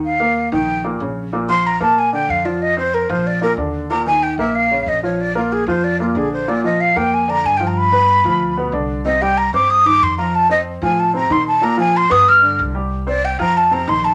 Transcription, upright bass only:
\new Staff \with { instrumentName = "Upright bass" } { \clef bass \time 4/4 \key ees \major \tempo 4 = 187 ees,4. bes,,4. bes,,4~ | bes,,4. bes,4. f,4~ | f,4. bes,,4. ees,4~ | ees,4. bes,,4. bes,,4~ |
bes,,4. f,4. bes,,4~ | bes,,4. f,4. g,4~ | g,4. d,4. c,4~ | c,4. g,4. f,4~ |
f,4. a,4. bes,4~ | bes,4. g,4. c,4~ | c,4. f,4. bes,,4 | }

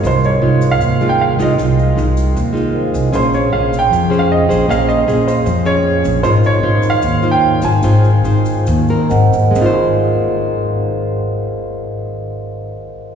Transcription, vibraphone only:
\new Staff \with { instrumentName = "Vibraphone" } { \time 4/4 \key aes \major \tempo 4 = 154 << { r1 | r2. f''8 aes''8 | r1 | r1 |
r1 | r2. aes''4 | r1 | r1 | } \\ { <bes' ees'' f'' c'''>1~ | <bes' ees'' f'' c'''>2. <bes' c'' ees'' f''>4 | <aes' f'' c'''>1~ | <aes' f'' c'''>1 |
<bes' ees'' f'' c'''>1~ | <bes' ees'' f'' c'''>2. <bes' c'' ees'' ges''>4 | <bes' c'' ees'' f''>1~ | <bes' c'' ees'' f''>1 | } >> }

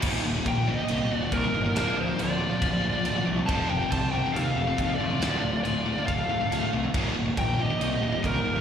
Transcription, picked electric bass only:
\new Staff \with { instrumentName = "Picked electric bass" } { \clef bass \time 4/4 \key ees \lydian \tempo 4 = 139 ees,,8 ees,,8 bes,,4 c,8 ees,,8 c,8 g,,8 | d,,8 d,,8 d,,4 d,,4 d,,8 c,8 | f,,8 f,,8 c,4 ees,8 f,,8 ees,8 a,,8 | d,,8 d,,8 d,,4 d,,4 d,,8 c,8 |
ees,,8 ees,,8 bes,,4 c,8 ees,,8 c,8 ees,,8 | }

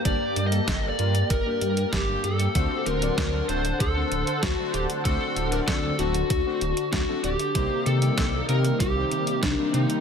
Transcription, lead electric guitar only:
\new Staff \with { instrumentName = "Lead electric guitar" } { \time 4/4 \key d \phrygian \tempo 4 = 96 \tuplet 3/2 { d''4 ees''8~ ees''8 d''4 } bes'4 g'8 a'8~ | a'8 bes'4 c''8 a'4 fis'8 g'8 | a'8. bes'16 a'8 fis'4. fis'8 g'8~ | g'8 a'4 bes'8 g'4 d'8 ees'8 | }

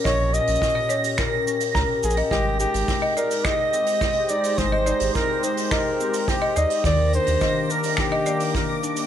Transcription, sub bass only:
\new Staff \with { instrumentName = "Sub bass" } { \clef bass \time 4/4 \key ees \major \tempo 4 = 106 bes,,8 r16 bes,,16 r2 des,16 r16 bes,,16 r16 | aes,,8 r16 aes,,16 r2. | aes,,8 r16 aes,,16 r2 r8 ees,16 r16 | ees,8 r16 ees,16 r2. | }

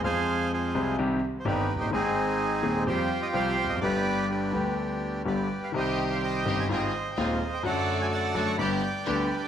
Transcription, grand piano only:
\new Staff \with { instrumentName = "Grand piano" } { \clef bass \time 4/4 \key c \minor \tempo 4 = 127 <f, f aes c' aes'>4. <c, c f aes c' aes'>8 <c, c ees g c' g'>8 r8 <g,, g, ees g c' g'>8 r32 f,,32 fis,,32 g,,32 | <aes,, aes, ees aes c' aes'>4. <ees,, ees, ees aes c' aes'>8 <f, f g c' g'>8 r8 <c, c f g c' g'>8 r32 e,32 f,32 fis,32 | <g,, g, d g b g'>4. <d, d g b g'>4. <g,, g, d g b g'>8 r8 | <c, c ees g c' g'>4. <g,, g, ees g c' g'>8 <aes,, aes, ees aes c' f'>8 r8 <ees,, ees, ees aes c' f'>8 r8 |
<fis, d fis a fis'>4. <fis, d fis a fis'>8 <g,, g, d g b g'>8 r8 <d, d g b g'>8 r8 | }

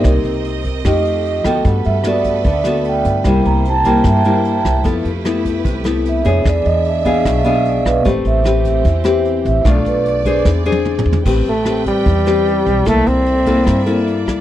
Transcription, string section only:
\new Staff \with { instrumentName = "String section" } { \time 4/4 \key a \minor \tempo 4 = 150 << { ees''1 | b'1 | c''1 | <a b'>1 |
e''1 | c'1 | d''1 | g''1 |
<bes e''>1 | } \\ { <c' bes'>2 <a g'>2 | <a a'>1 | <bes e'>1 | g'1 |
<d' gis'>1 | g'1 | a'2 <bis gis'>2 | <c' b'>1 |
<a' d''>1 | } >> }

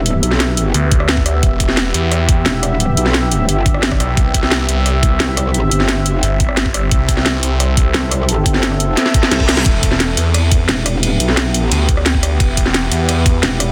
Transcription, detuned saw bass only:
\new Staff \with { instrumentName = "Detuned saw bass" } { \clef bass \time 4/4 \key e \minor \tempo 4 = 175 r2 d,2 | e,,4. e,4. r4 | r2. r8 b,,8 | c,4. c,4. r4 |
r2 g,,2 | c,4. c,4. r4 | r1 | e,,4. e,4. r4 |
r2 d,2 | e,,4. e,4. r4 | }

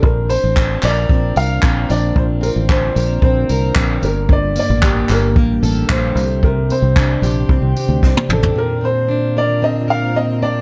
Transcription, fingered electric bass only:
\new Staff \with { instrumentName = "Fingered electric bass" } { \clef bass \time 4/4 \key bes \major \tempo 4 = 113 bes,,8. a,,8. bes,,8 bes,,8 c,8 bes,,8 bes,,8 | bes,,8. a,,8. bes,,8 bes,,8 c,8 bes,,8 g,,8~ | g,,8. a,,8. g,,8 a,,8 a,,8 bes,,8 c,8~ | c,8. c,8. bes,,8 c,16 c,16 r16 d,16 c,16 r16 a,,8 |
r1 | }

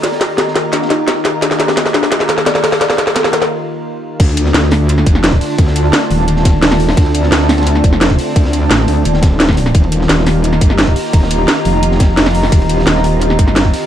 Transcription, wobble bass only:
\new Staff \with { instrumentName = "Wobble bass" } { \clef bass \time 4/4 \key d \phrygian \tempo 4 = 173 r1 | r1 | r1 | d,4 d,4. f,,4 r8 |
d,4 r8 ees,,2~ ees,,8 | d,4 d,4. f,,4 r8 | d,4 a,,8 d,8 ees,,2 | ees,,4 ees,,4. g,,4 r8 |
ees,,4 r8 f,,2~ f,,8 | ees,,4 ees,,4. g,,4 r8 | }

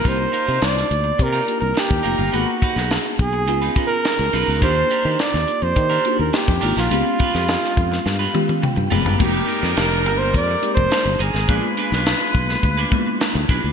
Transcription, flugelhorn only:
\new Staff \with { instrumentName = "Flugelhorn" } { \time 4/4 \key f \dorian \tempo 4 = 105 c''4 d''4 \tuplet 3/2 { bes'4 bes'8 } g'4 | ges'4 r8 aes'8~ \tuplet 3/2 { aes'8. r16 bes'8~ } bes'4 | c''4 d''8. c''4 bes'16 g'8. f'16~ | f'2.~ f'8 r8 |
g'4 \tuplet 3/2 { bes'4 c''8 d''4 c''8~ } c''8 aes'8~ | aes'8 r2. r8 | }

